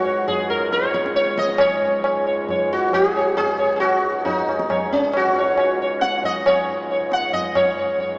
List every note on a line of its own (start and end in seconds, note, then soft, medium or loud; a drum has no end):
0.00 1.60 C#2 medium
0.00 1.61 G#2 medium
0.00 0.29 F#4 medium
0.05 0.26 C#5 soft
0.28 0.49 G#4 medium
0.28 tabla tin medium
0.28 tabla ge medium
0.50 0.72 A#4 medium
0.72 0.92 C#5 medium
0.72 tabla te medium
0.83 tabla te medium
0.94 1.15 C#5 soft
0.94 tabla ke medium
1.06 tabla te medium
1.16 1.39 C#5 medium
1.16 tabla te medium
1.26 tabla te medium
1.38 1.59 D#5 medium
1.38 tabla ke medium
1.48 tabla te medium
1.58 8.19 C#2 medium
1.58 8.19 G#2 medium
1.58 2.04 C#5 medium
1.58 tabla na loud
1.58 tabla ge medium
2.04 2.26 C#5 soft
2.04 tabla na medium
2.27 2.48 C#5 soft
2.49 2.70 C#5 soft
2.49 tabla tin medium
2.49 tabla ge medium
2.73 2.93 F#4 medium
2.93 3.36 G#4 loud
2.93 tabla na medium
2.93 tabla ge medium
3.16 3.36 C#5 soft
3.37 3.75 G#4 loud
3.37 tabla na medium
3.37 tabla ge medium
3.59 3.80 C#5 soft
3.76 4.25 F#4 medium
3.76 3.80 G#4 medium
3.82 tabla na medium
4.25 4.94 D#4 medium
4.25 tabla tin medium
4.25 tabla ge medium
4.49 tabla na medium
4.59 tabla ke medium
4.70 4.91 C#5 soft
4.70 tabla na medium
4.70 tabla ge medium
4.92 5.15 C#4 medium
4.92 tabla te medium
5.13 5.77 F#4 medium
5.13 tabla na medium
5.36 5.58 C#5 soft
5.36 tabla na medium
5.58 5.79 C#5 soft
5.58 tabla na medium
5.82 6.02 C#5 soft
6.01 6.24 F#5 medium
6.01 tabla te medium
6.23 6.47 D#5 medium
6.23 tabla tin medium
6.23 tabla ge medium
6.46 6.67 C#5 medium
6.46 tabla na medium
6.46 tabla ge medium
6.91 7.11 C#5 soft
7.12 7.33 F#5 medium
7.12 tabla te medium
7.33 7.56 D#5 medium
7.33 tabla tin medium
7.33 tabla ge medium
7.55 7.76 C#5 medium
7.55 tabla na medium
7.55 tabla ge medium
7.78 7.98 C#5 soft
8.00 8.19 C#5 soft